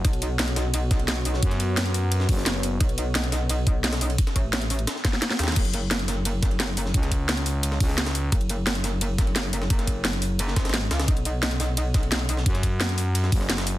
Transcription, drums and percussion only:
0.05 kick, closed hi-hat, ride
0.13 closed hi-hat
0.22 closed hi-hat, ride
0.39 snare, closed hi-hat, ride
0.48 closed hi-hat
0.56 snare, open hi-hat, ride
0.74 closed hi-hat, ride
0.91 kick, snare, closed hi-hat, ride
0.99 ride
1.08 snare, closed hi-hat, ride
1.25 open hi-hat, ride
1.34 snare
1.43 kick, closed hi-hat, ride
1.51 snare, closed hi-hat
1.60 closed hi-hat, ride
1.77 snare, closed hi-hat, ride
1.86 closed hi-hat
1.94 open hi-hat, ride
2.12 closed hi-hat, ride
2.20 snare
2.29 kick, closed hi-hat, open hi-hat
2.37 snare
2.46 snare, closed hi-hat, ride
2.63 open hi-hat, ride
2.80 kick, closed hi-hat, ride
2.89 closed hi-hat
2.98 closed hi-hat, ride
3.15 snare, closed hi-hat, ride
3.24 closed hi-hat
3.32 snare, open hi-hat, ride
3.49 closed hi-hat, ride
3.67 kick, closed hi-hat
3.84 snare, closed hi-hat, ride
3.93 snare, ride
4.01 open hi-hat
4.10 ride
4.18 kick, closed hi-hat, ride
4.27 snare, closed hi-hat
4.36 kick, closed hi-hat, ride
4.53 snare, closed hi-hat, ride
4.62 closed hi-hat
4.70 open hi-hat, ride
4.79 closed hi-hat
4.87 snare, closed hi-hat, ride
4.96 snare
5.05 kick, snare, closed hi-hat, ride
5.13 snare
5.22 snare, closed hi-hat, ride
5.30 snare
5.39 snare, open hi-hat, ride
5.44 snare, ride
5.48 snare, ride
5.52 snare, ride
5.56 kick, closed hi-hat, crash, ride
5.65 closed hi-hat
5.74 closed hi-hat, ride
5.91 snare, closed hi-hat, ride
5.99 closed hi-hat
6.08 snare, open hi-hat, ride
6.25 closed hi-hat, ride
6.43 kick, snare, closed hi-hat, ride
6.51 ride
6.60 snare, closed hi-hat, ride
6.77 open hi-hat, ride
6.86 snare
6.94 kick, closed hi-hat, ride
7.03 snare, closed hi-hat
7.12 kick, closed hi-hat, ride
7.29 snare, closed hi-hat, ride
7.37 closed hi-hat
7.46 open hi-hat, ride
7.63 closed hi-hat, ride
7.72 snare
7.80 kick, closed hi-hat, open hi-hat
7.89 snare
7.98 snare, closed hi-hat, ride
8.06 snare, ride
8.15 open hi-hat, ride
8.32 kick, closed hi-hat, ride
8.41 closed hi-hat
8.49 closed hi-hat, ride
8.67 snare, closed hi-hat, ride
8.75 closed hi-hat
8.84 snare, open hi-hat, ride
9.01 closed hi-hat, ride
9.18 kick, snare, closed hi-hat, ride
9.27 ride
9.36 snare, closed hi-hat, ride
9.53 open hi-hat, ride
9.62 snare
9.70 kick, closed hi-hat, ride
9.79 snare, closed hi-hat
9.87 kick, closed hi-hat, ride
10.05 snare, closed hi-hat, ride
10.13 closed hi-hat
10.22 open hi-hat, ride
10.39 closed hi-hat, ride
10.48 snare
10.56 kick, snare, closed hi-hat, ride
10.65 snare, ride
10.69 snare, ride
10.74 snare, closed hi-hat, ride
10.91 snare, open hi-hat, ride
11.00 snare, ride
11.08 kick, closed hi-hat, ride
11.17 closed hi-hat
11.25 closed hi-hat, ride
11.43 snare, closed hi-hat, ride
11.51 closed hi-hat
11.60 snare, open hi-hat, ride
11.77 closed hi-hat, ride
11.94 kick, snare, closed hi-hat, ride
12.03 ride
12.12 snare, closed hi-hat, ride
12.29 open hi-hat, ride
12.37 snare
12.46 kick, closed hi-hat, ride
12.55 snare, closed hi-hat
12.63 kick, closed hi-hat, ride
12.81 snare, closed hi-hat, ride
12.89 closed hi-hat
12.98 open hi-hat, ride
13.15 closed hi-hat, ride
13.24 snare
13.32 kick, closed hi-hat, open hi-hat
13.41 snare
13.50 snare, closed hi-hat, ride
13.58 snare, ride
13.67 open hi-hat, ride

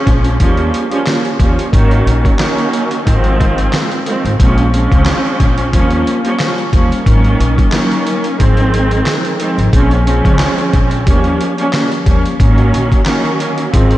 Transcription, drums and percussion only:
0.07 kick, closed hi-hat
0.24 closed hi-hat
0.40 kick, closed hi-hat
0.57 closed hi-hat
0.74 closed hi-hat
0.92 closed hi-hat
1.06 snare, clap, closed hi-hat
1.25 closed hi-hat
1.40 kick, closed hi-hat
1.59 closed hi-hat
1.73 kick, closed hi-hat
1.91 closed hi-hat
2.07 closed hi-hat
2.25 kick, closed hi-hat
2.39 snare, clap, closed hi-hat
2.58 closed hi-hat
2.73 closed hi-hat
2.91 closed hi-hat
3.07 kick, closed hi-hat
3.24 closed hi-hat
3.40 kick, closed hi-hat
3.58 closed hi-hat
3.73 snare, clap, closed hi-hat
3.91 closed hi-hat
4.06 closed hi-hat
4.25 closed hi-hat
4.40 kick, closed hi-hat
4.58 closed hi-hat
4.74 closed hi-hat
4.92 kick, closed hi-hat
5.05 snare, clap, closed hi-hat
5.25 closed hi-hat
5.40 kick, closed hi-hat
5.58 closed hi-hat
5.73 kick, closed hi-hat
5.90 closed hi-hat
6.07 closed hi-hat
6.25 closed hi-hat
6.39 snare, clap, closed hi-hat
6.58 closed hi-hat
6.73 kick, closed hi-hat
6.92 closed hi-hat
7.06 kick, closed hi-hat
7.24 closed hi-hat
7.40 closed hi-hat
7.58 kick, closed hi-hat
7.72 snare, clap, closed hi-hat
7.92 closed hi-hat
8.07 closed hi-hat
8.24 closed hi-hat
8.40 kick, closed hi-hat
8.57 closed hi-hat
8.74 closed hi-hat
8.91 closed hi-hat
9.06 snare, clap, closed hi-hat
9.25 closed hi-hat
9.40 closed hi-hat
9.59 closed hi-hat
9.73 kick, closed hi-hat
9.91 closed hi-hat
10.07 closed hi-hat
10.25 kick, closed hi-hat
10.39 snare, clap, closed hi-hat
10.58 closed hi-hat
10.73 kick, closed hi-hat
10.91 closed hi-hat
11.07 kick, closed hi-hat
11.24 closed hi-hat
11.41 closed hi-hat
11.58 closed hi-hat
11.73 snare, clap, closed hi-hat
11.92 closed hi-hat
12.06 kick, closed hi-hat
12.26 closed hi-hat
12.40 kick, closed hi-hat
12.58 closed hi-hat
12.74 closed hi-hat
12.92 kick, closed hi-hat
13.05 snare, clap, closed hi-hat
13.25 closed hi-hat
13.40 closed hi-hat
13.58 closed hi-hat
13.74 kick, closed hi-hat
13.91 closed hi-hat

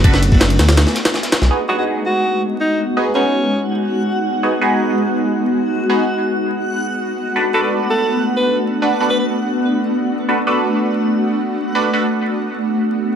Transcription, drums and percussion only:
0.04 kick, closed hi-hat, open hi-hat
0.14 snare, shaker
0.22 closed hi-hat
0.32 kick, open hi-hat
0.40 snare, closed hi-hat
0.50 closed hi-hat
0.59 snare, closed hi-hat, open hi-hat
0.69 snare, closed hi-hat
0.77 snare, closed hi-hat, shaker
0.87 snare
0.95 snare, closed hi-hat, shaker
1.05 snare, closed hi-hat
1.14 snare, shaker
1.23 snare, closed hi-hat, shaker
1.32 snare, closed hi-hat, shaker
1.41 snare, shaker

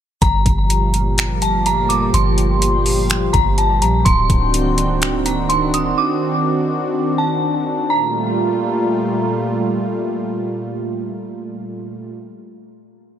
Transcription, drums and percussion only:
0.22 kick, closed hi-hat
0.46 kick, closed hi-hat
0.70 closed hi-hat
0.94 closed hi-hat
1.18 finger snap, closed hi-hat
1.42 closed hi-hat
1.66 closed hi-hat
1.90 closed hi-hat
2.14 closed hi-hat
2.38 closed hi-hat
2.62 closed hi-hat
2.86 open hi-hat
3.10 finger snap, closed hi-hat
3.34 kick, closed hi-hat
3.58 closed hi-hat
3.82 closed hi-hat
4.06 kick, closed hi-hat
4.30 kick, closed hi-hat
4.54 closed hi-hat
4.78 closed hi-hat
5.02 finger snap, closed hi-hat
5.26 closed hi-hat
5.50 closed hi-hat
5.74 closed hi-hat

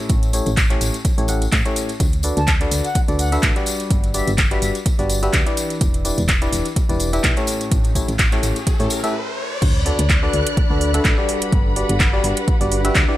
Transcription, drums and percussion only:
0.09 kick, closed hi-hat, tambourine
0.23 closed hi-hat, tambourine
0.33 open hi-hat, tambourine
0.46 closed hi-hat, tambourine
0.57 kick, clap, closed hi-hat, tambourine
0.70 clap, closed hi-hat, tambourine
0.81 open hi-hat, tambourine
0.94 closed hi-hat, tambourine
1.05 kick, closed hi-hat, tambourine
1.18 open hi-hat, tambourine
1.28 open hi-hat, tambourine
1.42 closed hi-hat, tambourine
1.52 kick, clap, closed hi-hat, tambourine
1.65 closed hi-hat, tambourine
1.76 open hi-hat, tambourine
1.89 closed hi-hat, tambourine
2.00 kick, closed hi-hat, tambourine
2.13 closed hi-hat, tambourine
2.23 open hi-hat, tambourine
2.37 closed hi-hat, tambourine
2.48 kick, clap, closed hi-hat, tambourine
2.61 closed hi-hat, tambourine
2.71 open hi-hat, tambourine
2.84 closed hi-hat, tambourine
2.95 kick, closed hi-hat, tambourine
3.08 closed hi-hat, tambourine
3.19 open hi-hat, tambourine
3.32 closed hi-hat, tambourine
3.43 kick, clap, closed hi-hat, tambourine
3.56 closed hi-hat, tambourine
3.66 open hi-hat, tambourine
3.80 closed hi-hat, tambourine
3.91 kick, closed hi-hat, tambourine
4.03 closed hi-hat, tambourine
4.14 open hi-hat, tambourine
4.27 closed hi-hat, tambourine
4.38 kick, clap, closed hi-hat, tambourine
4.51 closed hi-hat, tambourine
4.62 open hi-hat, tambourine
4.75 closed hi-hat, tambourine
4.86 kick, closed hi-hat, tambourine
4.99 open hi-hat, tambourine
5.09 open hi-hat, tambourine
5.23 closed hi-hat, tambourine
5.33 kick, clap, closed hi-hat, tambourine
5.47 closed hi-hat, tambourine
5.57 open hi-hat, tambourine
5.70 closed hi-hat, tambourine
5.81 kick, closed hi-hat, tambourine
5.94 closed hi-hat, tambourine
6.05 open hi-hat, tambourine
6.18 closed hi-hat, tambourine
6.28 kick, clap, closed hi-hat, tambourine
6.41 closed hi-hat, tambourine
6.52 open hi-hat, tambourine
6.65 closed hi-hat, tambourine
6.76 kick, closed hi-hat, tambourine
6.89 closed hi-hat, tambourine
7.00 open hi-hat, tambourine
7.13 closed hi-hat, tambourine
7.24 kick, clap, closed hi-hat, tambourine
7.36 closed hi-hat, tambourine
7.47 open hi-hat, tambourine
7.61 closed hi-hat, tambourine
7.71 kick, closed hi-hat, tambourine
7.84 closed hi-hat, tambourine
7.95 kick, open hi-hat, tambourine
8.08 closed hi-hat, tambourine
8.19 kick, clap, closed hi-hat, tambourine
8.32 clap, closed hi-hat, tambourine
8.43 open hi-hat, tambourine
8.56 closed hi-hat, tambourine
8.67 kick, closed hi-hat, tambourine
8.79 open hi-hat, tambourine
8.90 open hi-hat, tambourine
9.04 closed hi-hat, tambourine
9.62 kick, closed hi-hat, crash
9.86 open hi-hat
9.99 closed hi-hat
10.10 kick, clap, closed hi-hat
10.33 open hi-hat
10.47 closed hi-hat
10.57 kick, closed hi-hat
10.81 open hi-hat
10.94 closed hi-hat
11.05 kick, clap, closed hi-hat
11.29 open hi-hat
11.42 closed hi-hat
11.52 kick, closed hi-hat
11.76 open hi-hat
11.89 closed hi-hat
12.00 kick, clap, closed hi-hat
12.24 open hi-hat
12.37 closed hi-hat
12.48 kick, closed hi-hat
12.61 open hi-hat
12.72 open hi-hat
12.85 closed hi-hat
12.95 kick, clap, closed hi-hat

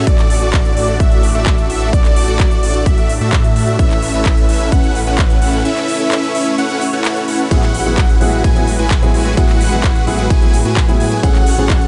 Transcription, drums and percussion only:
0.07 kick, closed hi-hat
0.19 clap, closed hi-hat
0.30 open hi-hat
0.53 kick, clap, closed hi-hat
0.65 closed hi-hat
0.77 open hi-hat
0.88 closed hi-hat
1.00 kick, closed hi-hat
1.12 closed hi-hat
1.23 open hi-hat
1.46 kick, clap, closed hi-hat
1.58 closed hi-hat
1.70 open hi-hat
1.93 kick, closed hi-hat
2.05 clap, closed hi-hat
2.16 open hi-hat
2.28 closed hi-hat
2.40 kick, clap, closed hi-hat
2.51 closed hi-hat
2.63 open hi-hat
2.75 closed hi-hat
2.86 kick, closed hi-hat
2.98 closed hi-hat
3.09 open hi-hat
3.21 closed hi-hat
3.33 kick, clap, closed hi-hat
3.44 closed hi-hat
3.56 open hi-hat
3.68 closed hi-hat
3.79 kick, closed hi-hat
3.91 clap, closed hi-hat
4.02 open hi-hat
4.14 closed hi-hat
4.26 kick, clap, closed hi-hat
4.37 closed hi-hat
4.49 open hi-hat
4.60 closed hi-hat
4.72 kick, closed hi-hat
4.84 closed hi-hat
4.95 open hi-hat
5.07 closed hi-hat
5.18 kick, clap, closed hi-hat
5.30 closed hi-hat
5.42 open hi-hat
5.53 closed hi-hat
5.65 closed hi-hat
5.77 clap, closed hi-hat
5.88 open hi-hat
6.00 closed hi-hat
6.12 clap, closed hi-hat
6.23 closed hi-hat
6.35 open hi-hat
6.47 closed hi-hat
6.58 closed hi-hat
6.70 closed hi-hat
6.81 open hi-hat
6.93 closed hi-hat
7.05 clap, closed hi-hat
7.16 closed hi-hat
7.28 open hi-hat
7.40 closed hi-hat
7.51 kick, closed hi-hat, ride, crash
7.63 clap, closed hi-hat
7.74 open hi-hat
7.86 closed hi-hat
7.98 kick, clap, closed hi-hat, ride
8.09 closed hi-hat
8.21 open hi-hat
8.33 closed hi-hat
8.44 kick, closed hi-hat, ride
8.56 closed hi-hat
8.68 open hi-hat
8.79 closed hi-hat
8.91 kick, clap, closed hi-hat, ride
9.03 closed hi-hat
9.14 open hi-hat
9.26 closed hi-hat
9.37 kick, closed hi-hat, ride
9.49 clap, closed hi-hat
9.61 open hi-hat
9.72 closed hi-hat
9.84 kick, clap, closed hi-hat, ride
9.96 closed hi-hat
10.07 open hi-hat
10.19 closed hi-hat
10.30 kick, closed hi-hat, ride
10.42 closed hi-hat
10.54 open hi-hat
10.65 closed hi-hat
10.77 kick, clap, closed hi-hat, ride
10.89 closed hi-hat
11.00 open hi-hat
11.12 closed hi-hat
11.23 kick, closed hi-hat, ride
11.35 clap, closed hi-hat
11.47 open hi-hat
11.58 closed hi-hat
11.70 kick, clap, closed hi-hat, ride
11.81 closed hi-hat

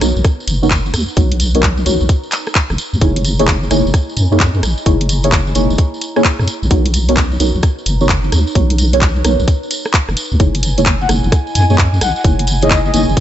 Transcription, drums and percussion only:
0.01 cross-stick, closed hi-hat, tambourine
0.17 tambourine
0.25 kick, cross-stick, closed hi-hat, tambourine
0.40 tambourine
0.47 closed hi-hat, tambourine
0.63 tambourine
0.71 kick, clap, closed hi-hat, tambourine
0.86 tambourine
0.94 cross-stick, closed hi-hat, tambourine
1.08 tambourine
1.17 kick, closed hi-hat, tambourine
1.31 closed hi-hat, tambourine
1.40 closed hi-hat, tambourine
1.55 closed hi-hat, tambourine
1.63 kick, clap, closed hi-hat, tambourine
1.77 tambourine
1.86 closed hi-hat, tambourine
2.01 tambourine
2.09 kick, closed hi-hat, tambourine
2.23 tambourine
2.31 clap, closed hi-hat, tambourine
2.47 cross-stick, tambourine
2.55 kick, clap, closed hi-hat, tambourine
2.70 cross-stick, tambourine
2.78 closed hi-hat, tambourine
2.93 tambourine
3.01 kick, closed hi-hat, tambourine
3.16 closed hi-hat, tambourine
3.25 closed hi-hat, tambourine
3.39 closed hi-hat, tambourine
3.48 kick, clap, closed hi-hat, tambourine
3.63 tambourine
3.71 cross-stick, closed hi-hat, tambourine
3.87 tambourine
3.94 kick, cross-stick, closed hi-hat, tambourine
4.09 tambourine
4.17 closed hi-hat, tambourine
4.32 tambourine
4.40 kick, clap, closed hi-hat, tambourine
4.54 tambourine
4.63 cross-stick, closed hi-hat, tambourine
4.78 tambourine
4.86 kick, closed hi-hat, tambourine
5.00 closed hi-hat, tambourine
5.09 closed hi-hat, tambourine
5.23 closed hi-hat, tambourine
5.32 kick, clap, closed hi-hat, tambourine
5.47 tambourine
5.55 closed hi-hat, tambourine
5.70 tambourine
5.78 kick, closed hi-hat, tambourine
5.94 tambourine
6.01 closed hi-hat, tambourine
6.16 cross-stick, tambourine
6.24 kick, clap, closed hi-hat, tambourine
6.39 cross-stick, tambourine
6.47 closed hi-hat, tambourine
6.63 tambourine
6.71 kick, closed hi-hat, tambourine
6.86 closed hi-hat, tambourine
6.94 closed hi-hat, tambourine
7.08 closed hi-hat, tambourine
7.16 kick, clap, closed hi-hat, tambourine
7.32 tambourine
7.40 closed hi-hat, tambourine
7.55 tambourine
7.63 kick, cross-stick, closed hi-hat, tambourine
7.78 tambourine
7.86 closed hi-hat, tambourine
8.01 tambourine
8.09 kick, clap, closed hi-hat, tambourine
8.24 tambourine
8.32 cross-stick, closed hi-hat, tambourine
8.47 tambourine
8.55 kick, closed hi-hat, tambourine
8.70 closed hi-hat, tambourine
8.78 closed hi-hat, tambourine
8.93 closed hi-hat, tambourine
9.02 kick, clap, closed hi-hat, tambourine
9.16 tambourine
9.24 cross-stick, closed hi-hat, tambourine
9.40 tambourine
9.48 kick, closed hi-hat, tambourine
9.63 tambourine
9.71 closed hi-hat, tambourine
9.85 cross-stick, tambourine
9.94 kick, clap, closed hi-hat, tambourine
10.09 cross-stick, tambourine
10.17 closed hi-hat, tambourine
10.32 tambourine
10.40 kick, closed hi-hat, tambourine
10.55 closed hi-hat, tambourine
10.63 closed hi-hat, tambourine
10.77 closed hi-hat, tambourine
10.86 kick, clap, closed hi-hat, tambourine
11.01 tambourine
11.09 cross-stick, closed hi-hat, tambourine
11.24 tambourine
11.32 kick, cross-stick, closed hi-hat, tambourine
11.47 tambourine
11.55 closed hi-hat, tambourine
11.70 tambourine
11.78 kick, clap, closed hi-hat, tambourine
11.94 tambourine
12.01 cross-stick, closed hi-hat, tambourine
12.16 tambourine
12.24 kick, closed hi-hat, tambourine
12.39 closed hi-hat, tambourine
12.47 closed hi-hat, tambourine
12.61 closed hi-hat, tambourine
12.71 kick, clap, closed hi-hat, tambourine
12.85 tambourine
12.94 closed hi-hat, tambourine
13.09 tambourine
13.17 kick, closed hi-hat, tambourine

